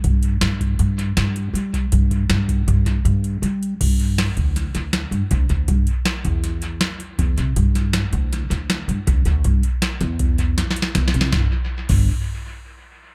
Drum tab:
CC |------------------------------|------------------------------|x-----------------------------|------------------------------|
HH |x--x--x--x--x--x--x--x--x--x--|x--x--x--x--x--x--x--x--x--x--|x--x--x--x--x--x--x--x--x--x--|x--x--x--x--x--x--x--x--x--x--|
SD |------o-----------o-----------|------o--------o--------------|------o-----o--o--o-----------|------o-----o-----o-----------|
BD |o--------o-----------------o--|o--o-----o--o--o--------------|o--------o--------------o--o--|o--------o--------------o--o--|

CC |------------------------------|------------------------------|---------x--------------------|
HH |x--x--x--x--x--x--x--x--x--x--|x--x--x--x--x--x--x--x--x--x--|------------------------------|
SD |---o--o-----o--o--o-----------|------o--o--------o-o-o-o-o-o-|o-----------------------------|
BD |o--------o--------------o--o--|o-----------o--o--------o-----|o--------o--------------------|